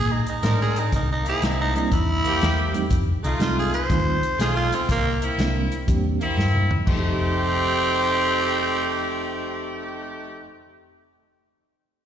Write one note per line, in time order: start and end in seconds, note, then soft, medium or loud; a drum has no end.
0.00 0.24 A#2 medium
0.00 0.13 G#4 loud
0.12 0.27 D#4 medium
0.26 0.44 D#4 medium
0.26 closed hi-hat medium
0.42 0.74 A2 loud
0.42 0.89 C4 medium
0.42 0.90 D4 medium
0.42 0.61 D#4 loud
0.42 0.89 A#4 medium
0.42 snare loud
0.42 closed hi-hat medium
0.62 0.81 G#4 medium
0.76 0.94 D#4 medium
0.76 closed hi-hat medium
0.92 1.23 C2 medium
0.92 1.10 D#4 medium
0.92 kick loud
0.92 closed hi-hat medium
1.12 1.27 D#4 medium
1.24 1.81 A#3 medium
1.24 1.82 C4 medium
1.24 1.82 E4 medium
1.24 closed hi-hat medium
1.29 1.47 G#4 loud
1.42 1.73 C2 medium
1.42 1.60 D#4 medium
1.42 snare loud
1.42 closed hi-hat medium
1.61 1.75 D#4 loud
1.75 1.90 G3 medium
1.75 1.90 A#3 medium
1.75 1.90 C4 medium
1.75 1.91 D4 medium
1.75 1.92 D#4 medium
1.75 1.91 E4 medium
1.75 closed hi-hat medium
1.91 2.22 E2 medium
1.91 2.89 E4 loud
1.91 kick loud
1.91 closed hi-hat medium
2.24 2.81 A#3 medium
2.24 2.81 C4 medium
2.24 2.82 G4 medium
2.24 closed hi-hat medium
2.41 2.73 E2 loud
2.41 snare loud
2.41 closed hi-hat medium
2.74 2.89 G3 medium
2.74 2.89 A3 medium
2.74 2.89 C4 medium
2.74 2.90 D#4 medium
2.74 2.90 G4 medium
2.74 closed hi-hat medium
2.90 3.11 F1 medium
2.90 kick loud
2.90 closed hi-hat medium
3.23 3.35 C2 medium
3.23 3.80 A3 medium
3.23 3.40 D#4 medium
3.23 3.80 D#4 medium
3.23 3.81 F4 medium
3.23 closed hi-hat medium
3.39 3.71 C2 medium
3.39 3.70 G3 medium
3.39 3.70 A3 medium
3.39 3.70 C4 medium
3.39 3.70 D#4 medium
3.39 3.70 F4 medium
3.39 3.57 F4 medium
3.39 snare loud
3.39 closed hi-hat medium
3.59 3.74 G#4 medium
3.74 4.38 C5 loud
3.74 closed hi-hat medium
3.89 4.21 D#2 loud
3.89 4.20 G3 medium
3.89 4.20 A3 medium
3.89 4.20 C4 medium
3.89 4.20 D#4 medium
3.89 4.20 F4 medium
3.89 kick loud
3.89 closed hi-hat medium
4.23 closed hi-hat medium
4.38 4.70 B1 loud
4.38 4.85 A3 medium
4.38 4.85 D#4 medium
4.38 4.86 F4 medium
4.38 4.56 G#4 medium
4.38 snare loud
4.38 closed hi-hat medium
4.56 4.77 F4 loud
4.72 4.90 C4 loud
4.72 closed hi-hat medium
4.89 5.20 C2 medium
4.89 5.22 A#3 loud
4.89 kick loud
4.89 closed hi-hat medium
5.22 5.78 A#3 medium
5.22 5.78 C4 medium
5.22 5.79 E4 medium
5.22 closed hi-hat medium
5.38 5.69 C2 medium
5.38 5.69 G3 medium
5.38 5.69 A#3 medium
5.38 5.69 C4 medium
5.38 5.69 D4 medium
5.38 5.69 E4 medium
5.38 snare loud
5.38 closed hi-hat medium
5.72 closed hi-hat medium
5.87 6.19 E2 medium
5.87 6.17 G3 medium
5.87 6.18 A#3 medium
5.87 6.18 C4 medium
5.87 6.18 D4 medium
5.87 6.18 G4 medium
5.87 kick loud
5.87 closed hi-hat medium
6.21 6.77 A#3 medium
6.21 6.77 C4 medium
6.21 6.78 E4 loud
6.21 closed hi-hat medium
6.37 6.68 G2 loud
6.37 snare medium
6.55 mid tom medium
6.71 10.39 F2 medium
6.71 floor tom loud
6.81 10.45 F3 medium
6.87 10.47 F1 medium
6.87 10.47 A3 medium
6.87 10.52 A3 medium
6.87 10.48 C4 loud
6.87 10.47 D#4 medium
6.87 10.47 G4 medium
6.87 kick loud
6.87 crash medium
6.93 10.58 D#4 medium
7.00 10.64 G4 medium